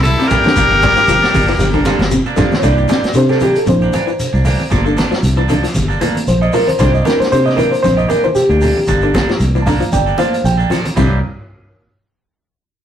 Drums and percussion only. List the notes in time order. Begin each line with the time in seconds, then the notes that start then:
0.05 ride bell, shekere
0.19 snare, shekere
0.30 kick, ride bell, low conga, shekere
0.44 snare, high conga, shekere
0.56 kick, ride bell, shekere
0.70 shekere
0.82 kick, ride bell, high conga, low conga, shekere
0.97 ride bell, shekere
1.08 ride bell, shekere
1.23 snare, shekere
1.34 kick, open hi-hat, high conga, low conga, shekere
1.48 snare, ride bell, shekere
1.60 ride bell, high conga, shekere
1.74 kick, shekere
1.85 snare, ride bell, high conga, low conga, shekere
1.99 snare, high conga, shekere
2.11 ride bell, shekere
2.25 shekere
2.37 kick, snare, ride bell, high conga, low conga, shekere
2.52 snare, high conga, shekere
2.63 kick, snare, closed hi-hat, shekere
2.77 shekere
2.88 snare, closed hi-hat, high conga, low conga, shekere
3.03 snare, closed hi-hat, shekere
3.14 closed hi-hat, shekere
3.29 snare, shekere
3.40 closed hi-hat, high conga, low conga, shekere
3.54 closed hi-hat, shekere
3.66 kick, closed hi-hat, high conga, shekere
3.82 shekere
3.93 closed hi-hat, high conga, low conga, shekere
4.08 shekere
4.19 closed hi-hat, shekere
4.34 shekere
4.45 open hi-hat, high conga, low conga, shekere
4.59 high conga, shekere
4.71 kick, snare, closed hi-hat, shekere
4.86 shekere
4.97 snare, closed hi-hat, high conga, shekere
5.12 snare, shekere
5.23 closed hi-hat, shekere
5.37 shekere
5.49 closed hi-hat, high conga, low conga, shekere
5.63 snare, closed hi-hat, shekere
5.74 kick, snare, closed hi-hat, high conga, shekere
5.90 shekere
6.01 closed hi-hat, high conga, low conga, shekere
6.15 closed hi-hat, high conga, shekere
6.27 closed hi-hat, shekere
6.42 shekere
6.53 open hi-hat, low conga, shekere
6.67 closed hi-hat, high conga, shekere
6.79 kick, snare, closed hi-hat, shekere
6.94 shekere
7.05 snare, closed hi-hat, high conga, shekere
7.21 snare, closed hi-hat, shekere
7.32 closed hi-hat, shekere
7.47 snare, shekere
7.58 closed hi-hat, high conga, low conga, shekere
7.72 closed hi-hat, shekere
7.84 kick, snare, closed hi-hat, high conga, shekere
7.98 shekere
8.10 closed hi-hat, high conga, low conga, shekere
8.23 high conga, shekere
8.35 closed hi-hat, shekere
8.50 shekere
8.61 open hi-hat, low conga, shekere
8.76 high conga, shekere
8.87 kick, closed hi-hat, shekere
9.02 shekere
9.15 kick, snare, closed hi-hat, high conga, low conga, shekere
9.28 snare, shekere
9.40 closed hi-hat, shekere
9.55 shekere
9.67 kick, open hi-hat, high conga, low conga, shekere
9.81 closed hi-hat, shekere
9.92 kick, closed hi-hat, high conga, shekere
10.07 shekere
10.18 closed hi-hat, high conga, shekere
10.34 closed hi-hat, shekere
10.45 closed hi-hat, shekere
10.59 shekere
10.70 snare, closed hi-hat, high conga, low conga, shekere
10.85 closed hi-hat, high conga, shekere
10.97 kick, crash, low conga, shekere